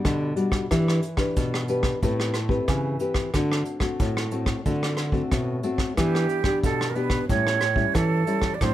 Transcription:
0.00 0.31 G3 medium
0.00 0.31 D4 medium
0.00 0.32 F#4 medium
0.05 0.67 B2 medium
0.05 0.33 D3 medium
0.05 kick medium
0.05 cross-stick medium
0.05 closed hi-hat medium
0.36 0.65 G3 medium
0.36 0.65 D4 medium
0.36 0.65 F#4 medium
0.36 closed hi-hat soft
0.52 kick medium
0.52 cross-stick medium
0.71 1.33 E3 medium
0.71 1.02 D4 medium
0.71 1.02 G4 medium
0.71 1.02 B4 medium
0.71 kick medium
0.71 cross-stick medium
0.71 closed hi-hat medium
0.88 cross-stick medium
1.02 closed hi-hat medium
1.17 1.63 D4 medium
1.17 1.63 G4 medium
1.17 1.63 B4 medium
1.17 kick medium
1.17 cross-stick medium
1.36 2.00 B2 medium
1.36 kick medium
1.36 closed hi-hat medium
1.54 cross-stick medium
1.68 1.97 D4 medium
1.68 1.97 G4 medium
1.68 1.97 B4 medium
1.68 closed hi-hat soft
1.83 kick medium
1.83 cross-stick medium
2.02 2.59 A2 loud
2.02 2.65 A3 medium
2.02 2.34 C4 medium
2.02 2.34 G4 medium
2.02 2.34 B4 medium
2.02 kick medium
2.02 closed hi-hat medium
2.20 cross-stick medium
2.34 cross-stick medium
2.34 closed hi-hat soft
2.49 2.95 C4 medium
2.49 2.95 G4 medium
2.49 2.95 B4 medium
2.49 kick medium
2.68 2.96 C#3 medium
2.68 3.31 E3 medium
2.68 kick medium
2.68 cross-stick medium
2.68 closed hi-hat medium
2.99 3.28 C4 medium
2.99 3.29 G4 medium
2.99 3.29 B4 medium
2.99 closed hi-hat soft
3.14 kick medium
3.14 cross-stick medium
3.14 closed hi-hat soft
3.34 3.97 D3 medium
3.34 3.78 A3 medium
3.34 3.79 C4 soft
3.34 3.79 F#4 medium
3.34 kick medium
3.34 cross-stick medium
3.34 closed hi-hat medium
3.52 cross-stick medium
3.65 closed hi-hat soft
3.80 4.26 A3 medium
3.80 4.26 C4 medium
3.80 4.27 F#4 medium
3.80 kick medium
3.80 cross-stick medium
3.80 closed hi-hat soft
4.00 4.63 A2 medium
4.00 kick medium
4.00 closed hi-hat medium
4.17 cross-stick medium
4.31 4.60 A3 medium
4.31 4.60 C4 medium
4.31 4.60 F#4 medium
4.31 closed hi-hat soft
4.46 kick medium
4.46 cross-stick medium
4.46 closed hi-hat soft
4.66 5.28 D3 medium
4.66 5.10 A3 soft
4.66 5.10 C4 medium
4.66 5.11 F#4 medium
4.66 kick medium
4.66 closed hi-hat medium
4.83 cross-stick medium
4.83 closed hi-hat soft
4.97 cross-stick medium
4.97 closed hi-hat soft
5.12 5.58 A3 medium
5.12 5.58 C4 medium
5.12 5.58 F#4 medium
5.12 kick medium
5.31 5.95 A2 medium
5.31 5.60 B2 medium
5.31 kick medium
5.31 cross-stick medium
5.31 closed hi-hat medium
5.63 5.92 A3 medium
5.63 5.92 C4 medium
5.63 5.92 F#4 medium
5.63 closed hi-hat soft
5.78 kick medium
5.78 cross-stick medium
5.97 6.60 E3 medium
5.97 6.42 B3 medium
5.97 6.42 D4 medium
5.97 6.59 G4 medium
5.97 6.42 G4 medium
5.97 kick medium
5.97 cross-stick medium
5.97 closed hi-hat medium
6.15 cross-stick medium
6.29 closed hi-hat medium
6.44 6.90 B3 medium
6.44 6.90 D4 medium
6.44 6.90 G4 medium
6.44 kick medium
6.44 cross-stick medium
6.63 7.26 B2 medium
6.63 6.91 A4 medium
6.63 kick medium
6.63 closed hi-hat medium
6.81 cross-stick medium
6.89 6.97 A#4 medium
6.95 7.24 B3 medium
6.95 7.24 D4 medium
6.95 7.24 G4 medium
6.95 7.29 B4 medium
6.95 closed hi-hat soft
7.10 kick medium
7.10 cross-stick medium
7.29 7.92 A2 medium
7.29 7.60 G3 medium
7.29 7.61 C#4 medium
7.29 7.61 E4 medium
7.29 7.96 C#5 medium
7.29 kick medium
7.29 closed hi-hat medium
7.47 cross-stick medium
7.61 cross-stick medium
7.61 closed hi-hat soft
7.76 8.21 G3 medium
7.76 8.22 C#4 medium
7.76 8.22 E4 medium
7.76 kick medium
7.95 8.58 E3 medium
7.95 8.56 A4 medium
7.95 kick medium
7.95 cross-stick medium
7.95 closed hi-hat medium
8.27 8.55 G3 medium
8.27 8.55 C#4 medium
8.27 8.55 E4 medium
8.27 closed hi-hat medium
8.42 kick medium
8.42 cross-stick medium
8.42 closed hi-hat soft
8.54 8.63 D5 medium
8.61 8.74 A2 medium
8.61 8.74 F#3 soft
8.61 8.74 C4 soft
8.61 8.74 D4 medium
8.61 8.74 C5 medium
8.61 kick medium
8.61 cross-stick medium
8.61 closed hi-hat medium

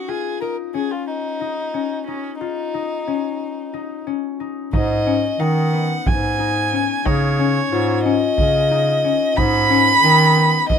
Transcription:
0.00 0.74 C#4 soft
0.00 0.41 D#4 soft
0.08 2.40 F4 medium
0.08 0.41 G#4 medium
0.41 1.41 D#4 medium
0.41 0.56 A#4 medium
0.74 1.73 C#4 medium
0.74 0.93 G#4 medium
0.92 1.06 F4 medium
1.07 2.03 D#4 medium
1.41 2.07 D#4 medium
1.74 3.07 C#4 medium
2.07 2.38 C#4 medium
2.07 2.74 D#4 medium
2.40 4.03 D#4 medium
2.40 4.93 F4 medium
2.74 3.73 D#4 medium
3.07 4.06 C#4 medium
3.74 4.40 D#4 medium
4.07 5.06 C#4 medium
4.40 4.73 D#4 soft
4.73 5.28 G#2 medium
4.73 5.39 D#4 medium
4.73 5.41 D#5 medium
4.73 frame drum medium
5.07 6.72 C#4 medium
5.39 5.95 D#3 medium
5.39 6.39 D#4 medium
5.39 6.08 F#5 medium
5.73 8.84 B3 medium
6.06 6.88 G#2 medium
6.06 7.07 G#5 medium
6.06 frame drum medium
6.39 7.05 D#4 medium
6.39 frame drum soft
6.73 7.39 C#4 medium
7.05 7.60 C#3 medium
7.05 8.71 D#4 medium
7.05 8.04 C#5 medium
7.05 frame drum medium
7.39 8.05 C#4 medium
7.71 8.26 G#2 medium
7.71 10.24 F4 medium
8.04 9.04 C#4 medium
8.04 9.38 D#5 medium
8.38 9.20 C#3 medium
8.38 frame drum medium
8.71 9.37 D#4 medium
9.04 9.70 C#4 medium
9.37 9.92 G#2 medium
9.37 10.03 D#4 medium
9.37 10.69 B5 loud
9.37 frame drum medium
9.70 10.79 C#4 medium
10.03 10.58 D#3 loud
10.03 10.79 D#4 medium
10.37 10.79 B3 medium
10.69 10.79 G#2 medium
10.69 10.79 D#5 medium
10.69 frame drum medium

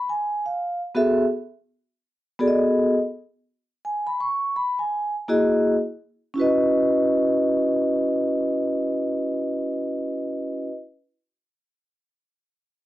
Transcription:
0.09 0.44 G#5 medium
0.46 0.80 F5 medium
0.95 1.23 B3 medium
0.95 1.23 F#4 medium
0.95 1.23 G#4 medium
0.95 1.23 A4 medium
0.95 1.24 E5 medium
2.39 2.93 B3 medium
2.39 2.94 F#4 medium
2.39 2.94 G#4 medium
2.39 2.94 A4 medium
2.39 2.48 D5 medium
2.48 2.98 D#5 medium
3.85 4.06 G#5 medium
4.07 4.20 B5 medium
4.20 4.55 C#6 medium
4.56 4.78 B5 medium
4.79 5.13 G#5 medium
5.28 5.74 A#3 medium
5.28 5.74 E4 medium
5.28 5.74 F#4 medium
5.28 5.74 G#4 medium
5.28 5.74 D#5 medium
6.34 10.66 C#4 medium
6.34 10.67 E4 medium
6.34 10.69 F#4 medium
6.40 10.71 B4 medium
6.40 10.73 D#5 medium

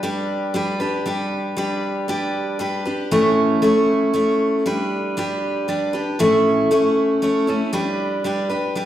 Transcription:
0.03 0.53 G3 medium
0.03 0.54 D4 medium
0.03 0.54 G4 medium
0.03 0.55 B4 medium
0.54 0.80 G3 medium
0.54 0.80 D4 medium
0.54 0.80 G4 medium
0.54 0.79 B4 medium
0.80 1.05 D4 soft
0.80 1.06 G4 soft
0.80 1.06 B4 medium
1.06 1.55 G3 medium
1.06 1.56 D4 medium
1.06 1.57 G4 medium
1.06 1.57 B4 medium
1.57 2.07 G3 medium
1.57 2.08 D4 medium
1.57 2.08 G4 medium
1.57 2.09 B4 medium
2.08 2.58 G3 medium
2.08 2.59 D4 medium
2.08 2.59 G4 medium
2.08 2.60 B4 medium
2.59 2.85 G3 medium
2.59 2.86 D4 medium
2.59 2.85 G4 medium
2.59 2.84 B4 medium
2.85 3.12 D4 soft
2.85 3.12 G4 soft
2.85 3.11 B4 soft
3.11 3.63 A2 medium
3.11 3.63 E3 medium
3.11 3.61 A3 medium
3.11 3.61 C#4 medium
3.11 3.62 E4 medium
3.11 3.63 C#5 medium
3.62 4.12 A3 medium
3.62 4.13 C#4 medium
3.62 4.14 E4 medium
3.62 4.14 C#5 medium
4.14 4.65 A3 medium
4.14 4.66 C#4 medium
4.14 4.66 E4 medium
4.14 4.66 C#5 medium
4.66 5.16 G3 medium
4.66 5.16 D4 medium
4.66 5.17 G4 medium
4.66 5.18 B4 medium
5.17 5.67 G3 medium
5.17 5.67 D4 medium
5.17 5.68 G4 medium
5.17 5.69 B4 medium
5.68 5.94 G3 medium
5.68 5.94 D4 medium
5.68 5.93 G4 medium
5.68 5.92 B4 medium
5.93 6.20 D4 soft
5.93 6.20 G4 soft
5.93 6.19 B4 soft
6.19 6.71 A2 medium
6.19 6.71 E3 medium
6.19 6.70 A3 medium
6.19 6.70 C#4 medium
6.19 6.71 E4 medium
6.19 6.71 C#5 medium
6.71 7.21 A3 medium
6.71 7.21 C#4 medium
6.71 7.22 E4 medium
6.71 7.23 C#5 medium
7.22 7.48 A3 medium
7.22 7.47 C#4 medium
7.22 7.47 E4 medium
7.22 7.46 C#5 medium
7.47 7.72 A3 soft
7.47 7.73 C#4 soft
7.47 7.73 E4 soft
7.47 7.73 C#5 soft
7.73 8.23 G3 medium
7.73 8.24 D4 medium
7.73 8.25 G4 medium
7.73 8.25 B4 medium
8.24 8.50 G3 medium
8.24 8.50 D4 medium
8.24 8.49 G4 medium
8.24 8.48 B4 medium
8.50 8.75 D4 soft
8.50 8.76 G4 soft
8.50 8.76 B4 soft
8.75 8.85 G3 medium
8.75 8.85 D4 medium
8.75 8.85 G4 medium
8.75 8.85 B4 medium

